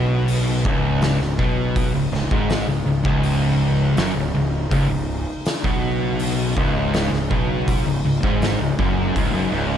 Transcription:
Already playing: B1 B2 C#3 G#3 D#4
0.28 open hi-hat
0.65 C#1 C#2, kick
1.02 snare, open hi-hat
1.21 C#1 C#2, snare
1.39 B1 B2, kick
1.76 kick, open hi-hat
1.94 C#1 C#2
2.12 C#1 C#2, snare
2.31 G#1 G#2, kick
2.50 snare, open hi-hat
2.67 C#1 C#2
2.86 C#1 C#2
3.04 C#1 C#2, kick
3.23 open hi-hat
3.97 F#1 F#2, snare, open hi-hat
4.15 C#1 C#2
4.34 C#1 C#2
4.70 C#1 C#2, kick, open hi-hat
4.89 C#1 C#2
5.46 snare, open hi-hat
5.63 B1 B2, kick
6.19 open hi-hat
6.56 C#1 C#2, kick
6.94 snare, open hi-hat
7.11 C#1 C#2, snare
7.30 B1 B2, kick
7.68 kick, open hi-hat
7.86 C#1 C#2
8.05 C#1 C#2
8.23 G#1 G#2, kick
8.42 snare, open hi-hat
8.59 C#1 C#2
8.79 F#1 F#2, kick
9.16 C#1 C#2, kick, open hi-hat
9.34 F#1 F#2
9.52 C#1 C#2

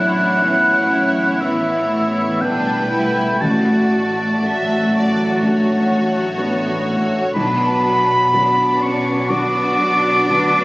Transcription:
Already playing: A1 F#3 B3 D4 E4 C#5 F#5
0.41 B3 C#4 E4 E5
1.40 E3 B3 E4 E5
1.90 A3
2.40 B1 G3 B3 D4 E4 B4 E5 G5
2.91 E4
3.41 A1 A3 F#4 D5 A5
4.42 F#3 A3 F#4 D5 E5
4.93 D5
5.41 A3 D4 F#4 C#5
6.37 A3 B3 D4 F#4
6.86 A3
7.35 B1 F#3 B3 D4 F#4 B4 B5
7.84 F#3
8.32 F#3 B3 D4 F#4 B4 D5
8.82 C#4 C#6
9.30 F#3 B3 D4 F#4 B4 D5 D6
9.79 F#3
10.29 D2 F#3 F#4 B4

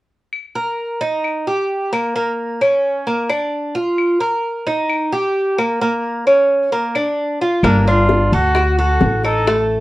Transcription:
0.33 claves
0.55 A#4
1.01 D#4
1.24 claves
1.47 G4
1.93 A#3, claves
2.16 A#3
2.61 C#4, claves
3.07 A#3
3.30 D4, claves
3.75 F4
3.98 claves
4.20 A#4
4.67 D#4
4.90 claves
5.12 G4
5.58 A#3, claves
5.81 A#3
6.27 C#4, claves
6.72 A#3
6.95 D4, claves
7.41 F4
7.63 G1 A#3 D4, high bongo, claves
7.87 D4 F4
8.09 high bongo
8.32 D2 F#4 A4, high bongo
8.55 F#4, high bongo, claves
8.79 F#4 A4
9.01 A1, high bongo, low bongo
9.24 D#4 A4, high bongo, claves
9.47 A3, high bongo

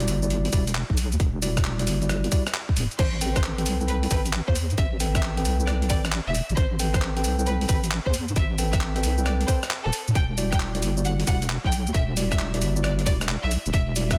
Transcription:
0.00 G3 E4 F#4 D5, closed hi-hat
0.08 G1, open hi-hat, shaker
0.23 G3 E4 F#4 D5, shaker
0.30 closed hi-hat, shaker
0.45 open hi-hat
0.53 E1 G3 E4 F#4 D5, kick, open hi-hat, shaker
0.67 closed hi-hat, shaker
0.75 clap, shaker
0.90 B1, kick
0.97 open hi-hat, shaker
1.12 E2, closed hi-hat, shaker
1.20 E1, kick, closed hi-hat, shaker
1.42 G3 E4 F#4 D5, open hi-hat, shaker
1.57 kick, cross-stick, closed hi-hat, shaker
1.65 clap, shaker
1.79 G3 E4 F#4 D5, closed hi-hat
1.87 G1, open hi-hat, shaker
2.02 G3 E4 F#4 D5, closed hi-hat, shaker
2.09 cross-stick, closed hi-hat, shaker
2.24 closed hi-hat
2.32 G3 E4 F#4 D5, kick, open hi-hat, shaker
2.47 cross-stick, closed hi-hat, shaker
2.54 clap, shaker
2.69 kick
2.77 D1, open hi-hat, shaker
2.91 closed hi-hat, shaker
2.99 A1 C5, kick, closed hi-hat, crash, shaker
3.21 C4 A4 B4 G5, open hi-hat, shaker
3.36 C5, kick, cross-stick, closed hi-hat, shaker
3.44 clap, shaker
3.58 C4 A4 B4 G5, closed hi-hat
3.66 C2, open hi-hat, shaker
3.81 C4 A4 B4 G5, shaker
3.88 B4, closed hi-hat, shaker
4.03 open hi-hat
4.11 A1 C4 A4 B4 G5, kick, open hi-hat, shaker
4.26 closed hi-hat, shaker
4.33 clap, shaker
4.48 E2 C5, kick
4.55 open hi-hat, shaker
4.70 A2, closed hi-hat, shaker
4.78 A1 E5, kick, closed hi-hat, shaker
5.00 C4 A4 B4 G5, open hi-hat, shaker
5.15 E5, kick, cross-stick, closed hi-hat, shaker
5.23 clap, shaker
5.37 C4 A4 B4 G5, closed hi-hat
5.45 C2, open hi-hat, shaker
5.60 C4 A4 B4 G5, shaker
5.67 D5, cross-stick, closed hi-hat, shaker
5.82 closed hi-hat
5.90 A1 C4 A4 B4 D5 G5, kick, open hi-hat, shaker
6.05 cross-stick, closed hi-hat, shaker
6.12 clap, shaker
6.27 E1 E5
6.35 open hi-hat, shaker
6.49 A1, closed hi-hat, shaker
6.57 A1 C5, kick, closed hi-hat, shaker
6.79 C4 A4 B4 G5, open hi-hat, shaker
6.94 C5, kick, cross-stick, closed hi-hat, shaker
7.02 clap, shaker
7.17 C4 A4 B4 G5, closed hi-hat
7.24 C2, open hi-hat, shaker
7.39 C4 A4 B4 G5, shaker
7.47 B4, closed hi-hat, shaker
7.61 open hi-hat
7.69 A1 C4 A4 B4 G5, kick, open hi-hat, shaker
7.84 closed hi-hat, shaker
7.91 clap, shaker
8.06 E2 C5, kick
8.14 open hi-hat, shaker
8.28 A2, closed hi-hat, shaker
8.36 A1 E5, kick, closed hi-hat, shaker
8.58 C4 A4 B4 G5, open hi-hat, shaker
8.73 E5, kick, cross-stick, closed hi-hat, shaker
8.81 clap, shaker
8.96 C4 A4 B4 G5, closed hi-hat
9.03 C2, open hi-hat, shaker
9.18 C4 A4 B4 G5, shaker
9.25 D5, cross-stick, closed hi-hat, shaker
9.41 closed hi-hat
9.48 C4 A4 B4 C5 G5, kick, open hi-hat, shaker
9.63 cross-stick, closed hi-hat, shaker
9.71 clap, shaker
9.85 E1 A4
9.93 open hi-hat, shaker
10.08 A2, closed hi-hat, shaker
10.15 E1 G5, kick, closed hi-hat, shaker
10.38 G3 E4 F#4 D5, open hi-hat, shaker
10.52 G5, kick, cross-stick, closed hi-hat, shaker
10.60 clap, shaker
10.75 G3 E4 F#4 D5, closed hi-hat
10.82 G1, open hi-hat, shaker
10.97 G3 E4 F#4 D5, shaker
11.05 F#5, closed hi-hat, shaker
11.20 open hi-hat
11.27 E1 G3 E4 F#4 D5 F#5, kick, open hi-hat, shaker
11.42 closed hi-hat, shaker
11.50 clap, shaker
11.64 B1 G5, kick
11.72 open hi-hat, shaker
11.87 E2, closed hi-hat, shaker
11.94 E1 E5, kick, closed hi-hat, shaker
12.17 G3 E4 F#4 D5, open hi-hat, shaker
12.32 E5, kick, cross-stick, closed hi-hat, shaker
12.39 clap, shaker
12.54 G3 E4 F#4 D5, closed hi-hat
12.62 G1, open hi-hat, shaker
12.76 G3 E4 F#4 D5, shaker
12.84 D5, cross-stick, closed hi-hat, shaker
12.99 closed hi-hat
13.06 E1 G3 E4 F#4 D5, kick, open hi-hat, shaker
13.21 cross-stick, closed hi-hat, shaker
13.29 clap, shaker
13.43 B1 E5
13.51 open hi-hat, shaker
13.66 E1, closed hi-hat, shaker
13.73 E1 E5, kick, closed hi-hat, shaker
13.96 G3 E4 F#4 D5, open hi-hat, shaker
14.11 E5, kick, cross-stick, closed hi-hat, shaker

